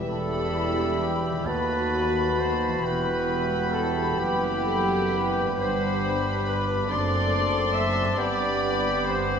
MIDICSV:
0, 0, Header, 1, 13, 480
1, 0, Start_track
1, 0, Key_signature, 1, "minor"
1, 0, Tempo, 924499
1, 50, Time_signature, 6, 3, 24, 8
1, 1009, Tempo, 903614
1, 2449, Tempo, 947867
1, 2929, Tempo, 864553
1, 5034, End_track
2, 0, Start_track
2, 0, Title_t, "Flute"
2, 0, Program_c, 0, 73
2, 48, Note_on_c, 0, 83, 46
2, 2908, Note_off_c, 0, 83, 0
2, 2915, Note_on_c, 0, 86, 54
2, 5034, Note_off_c, 0, 86, 0
2, 5034, End_track
3, 0, Start_track
3, 0, Title_t, "Violin section"
3, 0, Program_c, 1, 48
3, 48, Note_on_c, 1, 83, 46
3, 748, Note_off_c, 1, 83, 0
3, 770, Note_on_c, 1, 83, 47
3, 1480, Note_off_c, 1, 83, 0
3, 1489, Note_on_c, 1, 83, 47
3, 2906, Note_off_c, 1, 83, 0
3, 2933, Note_on_c, 1, 83, 52
3, 3645, Note_off_c, 1, 83, 0
3, 3657, Note_on_c, 1, 84, 52
3, 4363, Note_off_c, 1, 84, 0
3, 4369, Note_on_c, 1, 83, 57
3, 5034, Note_off_c, 1, 83, 0
3, 5034, End_track
4, 0, Start_track
4, 0, Title_t, "Oboe"
4, 0, Program_c, 2, 68
4, 47, Note_on_c, 2, 76, 50
4, 759, Note_on_c, 2, 81, 49
4, 767, Note_off_c, 2, 76, 0
4, 1482, Note_on_c, 2, 79, 55
4, 1490, Note_off_c, 2, 81, 0
4, 3498, Note_off_c, 2, 79, 0
4, 3651, Note_on_c, 2, 81, 49
4, 4361, Note_on_c, 2, 79, 63
4, 4369, Note_off_c, 2, 81, 0
4, 5034, Note_off_c, 2, 79, 0
4, 5034, End_track
5, 0, Start_track
5, 0, Title_t, "Trumpet section"
5, 0, Program_c, 3, 61
5, 43, Note_on_c, 3, 69, 66
5, 506, Note_off_c, 3, 69, 0
5, 527, Note_on_c, 3, 67, 53
5, 765, Note_on_c, 3, 71, 67
5, 768, Note_off_c, 3, 67, 0
5, 1248, Note_on_c, 3, 72, 61
5, 1251, Note_off_c, 3, 71, 0
5, 1485, Note_on_c, 3, 71, 67
5, 1491, Note_off_c, 3, 72, 0
5, 1951, Note_off_c, 3, 71, 0
5, 1952, Note_on_c, 3, 69, 64
5, 2191, Note_on_c, 3, 67, 73
5, 2196, Note_off_c, 3, 69, 0
5, 2921, Note_on_c, 3, 72, 74
5, 2923, Note_off_c, 3, 67, 0
5, 3405, Note_off_c, 3, 72, 0
5, 3417, Note_on_c, 3, 71, 59
5, 3651, Note_on_c, 3, 74, 75
5, 3656, Note_off_c, 3, 71, 0
5, 4118, Note_on_c, 3, 76, 68
5, 4123, Note_off_c, 3, 74, 0
5, 4280, Note_off_c, 3, 76, 0
5, 4352, Note_on_c, 3, 74, 78
5, 4833, Note_off_c, 3, 74, 0
5, 4840, Note_on_c, 3, 72, 71
5, 5034, Note_off_c, 3, 72, 0
5, 5034, End_track
6, 0, Start_track
6, 0, Title_t, "Violin section"
6, 0, Program_c, 4, 48
6, 45, Note_on_c, 4, 69, 57
6, 508, Note_off_c, 4, 69, 0
6, 531, Note_on_c, 4, 67, 41
6, 770, Note_off_c, 4, 67, 0
6, 775, Note_on_c, 4, 71, 57
6, 1248, Note_on_c, 4, 72, 55
6, 1257, Note_off_c, 4, 71, 0
6, 1491, Note_off_c, 4, 72, 0
6, 1494, Note_on_c, 4, 71, 57
6, 1956, Note_off_c, 4, 71, 0
6, 1959, Note_on_c, 4, 69, 51
6, 2193, Note_on_c, 4, 67, 62
6, 2200, Note_off_c, 4, 69, 0
6, 2916, Note_on_c, 4, 72, 60
6, 2925, Note_off_c, 4, 67, 0
6, 3403, Note_off_c, 4, 72, 0
6, 3404, Note_on_c, 4, 71, 46
6, 3641, Note_on_c, 4, 74, 60
6, 3650, Note_off_c, 4, 71, 0
6, 4110, Note_on_c, 4, 76, 65
6, 4118, Note_off_c, 4, 74, 0
6, 4355, Note_off_c, 4, 76, 0
6, 4356, Note_on_c, 4, 74, 69
6, 4835, Note_off_c, 4, 74, 0
6, 4847, Note_on_c, 4, 72, 62
6, 5034, Note_off_c, 4, 72, 0
6, 5034, End_track
7, 0, Start_track
7, 0, Title_t, "Viola section"
7, 0, Program_c, 5, 48
7, 0, Note_on_c, 5, 59, 30
7, 54, Note_off_c, 5, 59, 0
7, 56, Note_on_c, 5, 67, 44
7, 57, Note_on_c, 5, 52, 42
7, 752, Note_off_c, 5, 67, 0
7, 753, Note_off_c, 5, 52, 0
7, 770, Note_on_c, 5, 54, 45
7, 771, Note_on_c, 5, 66, 44
7, 1482, Note_on_c, 5, 64, 45
7, 1483, Note_on_c, 5, 55, 45
7, 1494, Note_off_c, 5, 54, 0
7, 1494, Note_off_c, 5, 66, 0
7, 2183, Note_off_c, 5, 64, 0
7, 2194, Note_on_c, 5, 71, 47
7, 2440, Note_off_c, 5, 71, 0
7, 2441, Note_on_c, 5, 69, 51
7, 2684, Note_off_c, 5, 69, 0
7, 2693, Note_on_c, 5, 71, 53
7, 2915, Note_off_c, 5, 71, 0
7, 2918, Note_off_c, 5, 55, 0
7, 2921, Note_on_c, 5, 71, 50
7, 2924, Note_on_c, 5, 55, 48
7, 3638, Note_off_c, 5, 71, 0
7, 3640, Note_off_c, 5, 55, 0
7, 3655, Note_on_c, 5, 69, 49
7, 3658, Note_on_c, 5, 57, 48
7, 4349, Note_off_c, 5, 57, 0
7, 4362, Note_off_c, 5, 69, 0
7, 4368, Note_on_c, 5, 67, 51
7, 4372, Note_on_c, 5, 59, 52
7, 5034, Note_off_c, 5, 59, 0
7, 5034, Note_off_c, 5, 67, 0
7, 5034, End_track
8, 0, Start_track
8, 0, Title_t, "Clarinet"
8, 0, Program_c, 6, 71
8, 49, Note_on_c, 6, 64, 45
8, 768, Note_on_c, 6, 66, 50
8, 776, Note_off_c, 6, 64, 0
8, 2202, Note_on_c, 6, 64, 44
8, 2210, Note_off_c, 6, 66, 0
8, 2926, Note_off_c, 6, 64, 0
8, 2929, Note_on_c, 6, 62, 50
8, 5034, Note_off_c, 6, 62, 0
8, 5034, End_track
9, 0, Start_track
9, 0, Title_t, "Harp"
9, 0, Program_c, 7, 46
9, 0, Note_on_c, 7, 52, 42
9, 0, Note_on_c, 7, 64, 36
9, 4, Note_on_c, 7, 67, 36
9, 27, Note_on_c, 7, 71, 34
9, 675, Note_on_c, 7, 51, 39
9, 701, Note_on_c, 7, 66, 31
9, 723, Note_on_c, 7, 69, 32
9, 739, Note_off_c, 7, 71, 0
9, 743, Note_off_c, 7, 52, 0
9, 745, Note_on_c, 7, 71, 31
9, 755, Note_off_c, 7, 64, 0
9, 766, Note_off_c, 7, 67, 0
9, 1395, Note_on_c, 7, 52, 42
9, 1420, Note_on_c, 7, 64, 37
9, 1441, Note_on_c, 7, 67, 35
9, 1460, Note_off_c, 7, 71, 0
9, 1465, Note_off_c, 7, 51, 0
9, 1478, Note_off_c, 7, 66, 0
9, 1489, Note_off_c, 7, 69, 0
9, 2836, Note_on_c, 7, 43, 43
9, 2859, Note_on_c, 7, 62, 36
9, 2873, Note_off_c, 7, 67, 0
9, 2900, Note_off_c, 7, 52, 0
9, 2904, Note_on_c, 7, 71, 37
9, 2912, Note_off_c, 7, 64, 0
9, 3564, Note_on_c, 7, 42, 42
9, 3578, Note_off_c, 7, 62, 0
9, 3585, Note_on_c, 7, 62, 35
9, 3611, Note_on_c, 7, 69, 38
9, 3625, Note_off_c, 7, 43, 0
9, 3635, Note_on_c, 7, 72, 38
9, 3663, Note_off_c, 7, 71, 0
9, 4270, Note_on_c, 7, 43, 48
9, 4289, Note_off_c, 7, 62, 0
9, 4296, Note_on_c, 7, 62, 42
9, 4336, Note_off_c, 7, 42, 0
9, 4343, Note_on_c, 7, 71, 43
9, 4359, Note_off_c, 7, 69, 0
9, 4371, Note_off_c, 7, 72, 0
9, 5034, Note_off_c, 7, 43, 0
9, 5034, Note_off_c, 7, 62, 0
9, 5034, Note_off_c, 7, 71, 0
9, 5034, End_track
10, 0, Start_track
10, 0, Title_t, "French horn section"
10, 0, Program_c, 8, 60
10, 50, Note_on_c, 8, 64, 46
10, 53, Note_on_c, 8, 55, 51
10, 749, Note_off_c, 8, 64, 0
10, 751, Note_off_c, 8, 55, 0
10, 773, Note_on_c, 8, 57, 46
10, 773, Note_on_c, 8, 66, 49
10, 1403, Note_off_c, 8, 57, 0
10, 1403, Note_off_c, 8, 66, 0
10, 1494, Note_on_c, 8, 59, 49
10, 1496, Note_on_c, 8, 64, 51
10, 2910, Note_off_c, 8, 64, 0
10, 2941, Note_on_c, 8, 62, 50
10, 3635, Note_off_c, 8, 59, 0
10, 3651, Note_on_c, 8, 60, 50
10, 5034, Note_off_c, 8, 60, 0
10, 5034, Note_off_c, 8, 62, 0
10, 5034, End_track
11, 0, Start_track
11, 0, Title_t, "Bassoon"
11, 0, Program_c, 10, 70
11, 47, Note_on_c, 10, 55, 51
11, 763, Note_on_c, 10, 59, 48
11, 771, Note_off_c, 10, 55, 0
11, 3501, Note_off_c, 10, 59, 0
11, 3655, Note_on_c, 10, 60, 51
11, 4340, Note_off_c, 10, 60, 0
11, 4362, Note_on_c, 10, 59, 61
11, 5034, Note_off_c, 10, 59, 0
11, 5034, End_track
12, 0, Start_track
12, 0, Title_t, "Cello section"
12, 0, Program_c, 11, 48
12, 45, Note_on_c, 11, 40, 49
12, 747, Note_off_c, 11, 40, 0
12, 760, Note_on_c, 11, 39, 47
12, 1482, Note_on_c, 11, 40, 48
12, 1489, Note_off_c, 11, 39, 0
12, 2182, Note_off_c, 11, 40, 0
12, 2198, Note_on_c, 11, 42, 46
12, 2927, Note_off_c, 11, 42, 0
12, 2927, Note_on_c, 11, 43, 54
12, 3642, Note_off_c, 11, 43, 0
12, 3649, Note_on_c, 11, 42, 54
12, 4359, Note_off_c, 11, 42, 0
12, 4366, Note_on_c, 11, 43, 55
12, 5034, Note_off_c, 11, 43, 0
12, 5034, End_track
13, 0, Start_track
13, 0, Title_t, "Double bass section"
13, 0, Program_c, 12, 48
13, 49, Note_on_c, 12, 28, 53
13, 749, Note_off_c, 12, 28, 0
13, 763, Note_on_c, 12, 39, 53
13, 1487, Note_on_c, 12, 28, 58
13, 1490, Note_off_c, 12, 39, 0
13, 2185, Note_off_c, 12, 28, 0
13, 2197, Note_on_c, 12, 30, 50
13, 2925, Note_on_c, 12, 31, 59
13, 2926, Note_off_c, 12, 30, 0
13, 3641, Note_off_c, 12, 31, 0
13, 3659, Note_on_c, 12, 30, 59
13, 4362, Note_on_c, 12, 31, 68
13, 4364, Note_off_c, 12, 30, 0
13, 5034, Note_off_c, 12, 31, 0
13, 5034, End_track
0, 0, End_of_file